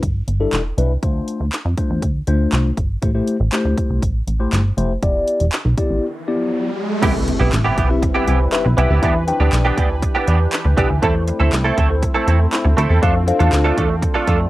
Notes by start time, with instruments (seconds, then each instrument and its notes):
0.03 analog synth bass G1, kick, closed hi-hat
0.28 analog synth bass G1, closed hi-hat
0.40 tine electric piano G3 D4 E4 A4
0.53 analog synth bass E1, snare, clap, closed hi-hat
0.78 analog synth bass C2, tine electric piano G3 D4 E4 B4, closed hi-hat
1.03 analog synth bass D2, tine electric piano A3 D4 F4 C5, kick, closed hi-hat
1.28 closed hi-hat
1.40 analog synth bass D2
1.53 snare, clap, closed hi-hat
1.65 analog synth bass F2
1.78 tine electric piano A3 D4 F4 C5, kick, closed hi-hat
1.90 analog synth bass E2
2.02 analog synth bass D2, kick, closed hi-hat
2.27 analog synth bass D2, tine electric piano A3 D4 F4 C5, closed hi-hat
2.52 analog synth bass C2, snare, clap, closed hi-hat
2.77 analog synth bass G1, kick, closed hi-hat
3.02 analog synth bass A1, tine electric piano A3 E4 G4 C5, kick, closed hi-hat
3.14 tine electric piano A3 E4 G4 C5
3.28 closed hi-hat
3.40 analog synth bass A1
3.52 tine electric piano A3 E4 G4 C5, snare, clap, closed hi-hat
3.65 analog synth bass D2
3.78 kick, closed hi-hat
3.90 analog synth bass C2
4.03 analog synth bass A1, kick, closed hi-hat
4.27 analog synth bass A1, closed hi-hat
4.40 tine electric piano A3 E4 G4 C5
4.52 analog synth bass G1, snare, clap, closed hi-hat
4.77 analog synth bass F1, tine electric piano A3 E4 G4 C5, closed hi-hat
5.02 analog synth bass E1, tine electric piano B3 E4 G4 D5, kick, closed hi-hat, riser
5.28 closed hi-hat
5.40 analog synth bass E1, closed hi-hat
5.53 snare, clap, closed hi-hat
5.65 analog synth bass B1
5.78 tine electric piano B3 E4 G4 D5, kick, closed hi-hat
5.90 analog synth bass A1
6.28 tine electric piano B3 E4 G4 D5
7.02 analog synth bass C2, clean electric guitar E3 B3 E4 G4, analog synth pad G3 C4 E4 B4, tine electric piano C4 E4 G4 B4 E5, kick, closed hi-hat, crash, impact
7.15 muted clean electric guitar stroke
7.27 muted clean electric guitar stroke, closed hi-hat
7.39 analog synth bass B1, clean electric guitar E3 B3 E4 G4
7.52 analog synth bass A1, muted clean electric guitar stroke, snare, clap, closed hi-hat
7.64 clean electric guitar E3 B3 E4 G4
7.77 analog synth bass B1, clean electric guitar E3 B3 E4 G4, kick, closed hi-hat
7.90 tine electric piano C4 E4 G4 B4 E5, muted clean electric guitar stroke
8.02 muted clean electric guitar stroke, kick, closed hi-hat
8.14 clean electric guitar E3 B3 E4 G4, tine electric piano C4 E4 G4 B4 E5
8.27 analog synth bass C2, clean electric guitar E3 B3 E4 G4, closed hi-hat
8.40 muted clean electric guitar stroke
8.52 tine electric piano C4 E4 G4 B4 E5, muted clean electric guitar stroke, snare, clap, closed hi-hat
8.65 analog synth bass B1, muted clean electric guitar stroke
8.77 analog synth bass C2, clean electric guitar E3 B3 E4 G4, tine electric piano C4 E4 G4 B4 E5, closed hi-hat
8.90 analog synth bass D2, clean electric guitar E3 B3 E4 G4
9.02 analog synth bass E2, clean electric guitar E3 B3 D4 G4, analog synth pad E3 D4 G4, tine electric piano D4 E4 G4 B4 E5, kick, closed hi-hat
9.15 muted clean electric guitar stroke
9.27 tine electric piano D4 E4 G4 B4 G5, muted clean electric guitar stroke, closed hi-hat
9.40 analog synth bass D2, clean electric guitar E3 B3 D4 G4
9.52 analog synth bass B1, muted clean electric guitar stroke, snare, clap, closed hi-hat
9.65 clean electric guitar E3 B3 D4 G4
9.77 analog synth bass D2, clean electric guitar E3 B3 D4 G4, kick, closed hi-hat
9.90 muted clean electric guitar stroke
10.03 muted clean electric guitar stroke, kick, closed hi-hat
10.15 clean electric guitar E3 B3 D4 G4
10.27 analog synth bass E2, clean electric guitar E3 B3 D4 G4, closed hi-hat
10.40 muted clean electric guitar stroke
10.52 muted clean electric guitar stroke, snare, clap, closed hi-hat
10.65 analog synth bass D2, muted clean electric guitar stroke
10.77 analog synth bass C2, clean electric guitar E3 B3 D4 G4, tine electric piano D4 E4 G4 B4 E5, kick, closed hi-hat
10.90 analog synth bass D2, muted clean electric guitar stroke
11.02 analog synth bass E2, clean electric guitar A3 C4 E4 A4, analog synth pad A3 C4 E4, tine electric piano E4 A4 C5, kick, closed hi-hat
11.15 muted clean electric guitar stroke
11.28 muted clean electric guitar stroke, closed hi-hat
11.40 analog synth bass D2, clean electric guitar A3 C4 E4 A4
11.52 analog synth bass C2, muted clean electric guitar stroke, snare, clap, closed hi-hat
11.64 clean electric guitar A3 C4 E4 A4
11.77 analog synth bass D2, clean electric guitar A3 C4 E4 A4, kick, closed hi-hat
11.90 tine electric piano E4 A4 C5, muted clean electric guitar stroke
12.02 muted clean electric guitar stroke, kick, closed hi-hat
12.14 clean electric guitar A3 C4 E4 A4, tine electric piano E4 A4 C5
12.27 analog synth bass E2, clean electric guitar A3 C4 E4 A4, closed hi-hat
12.39 muted clean electric guitar stroke
12.52 tine electric piano E4 A4 C5, muted clean electric guitar stroke, snare, clap, closed hi-hat
12.65 analog synth bass D2, muted clean electric guitar stroke
12.77 analog synth bass D2, clean electric guitar A3 C4 E4 A4, tine electric piano E4 A4 C5, closed hi-hat
12.89 analog synth bass E2, clean electric guitar A3 C4 E4 A4
13.02 analog synth bass F2, clean electric guitar A3 D4 F4 A4, tine electric piano D4 F4 A4 C5 F5, analog synth pad D4 F4 A4, kick, closed hi-hat
13.15 muted clean electric guitar stroke
13.27 tine electric piano D4 F4 A4 C5 F5, muted clean electric guitar stroke, closed hi-hat
13.39 analog synth bass E2, clean electric guitar A3 D4 F4 A4, closed hi-hat
13.53 analog synth bass D2, snare, clap, closed hi-hat
13.64 clean electric guitar A3 D4 F4 A4
13.77 analog synth bass E2, clean electric guitar A3 D4 F4 A4, kick, closed hi-hat
13.89 muted clean electric guitar stroke
14.02 muted clean electric guitar stroke, kick, closed hi-hat
14.14 clean electric guitar A3 D4 F4 A4
14.27 analog synth bass F2, clean electric guitar A3 D4 F4 A4, kick, closed hi-hat
14.40 muted clean electric guitar stroke